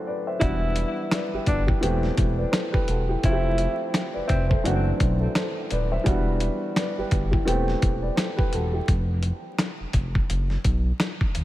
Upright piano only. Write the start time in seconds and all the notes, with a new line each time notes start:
Already playing: F#2 E3 A3 C4 D4 F#4 A4 C5
0.07 B4 D5
0.27 C5 E5
0.39 E3 G3 B3 D4 F#4
1.14 B4 D5
1.34 G4 B4
1.67 E4 G4
1.81 E3 A3 B3 C4 G4
2.38 B4 D5
2.52 A4 C5
2.72 G4 B4
2.89 F#4 A4
3.09 E4 G4
3.24 F3 A3 C4 E4 F4
3.33 G4
4.13 B4 D5
4.28 C5 E5
4.49 A4 C5
4.64 F#2 E3 A3 C4 D4 F#4
5.20 F#4 A4
5.35 A4 C5
5.72 B4 D5
5.92 C5 E5
6.04 E3 G3 B3 D4 F#4
6.79 B4 D5
6.98 G4 B4
7.31 E4 G4
7.45 E3 A3 B3 C4 G4
8.02 B4 D5
8.16 A4 C5
8.37 G4 B4
8.54 F#4 A4
8.73 E4 G4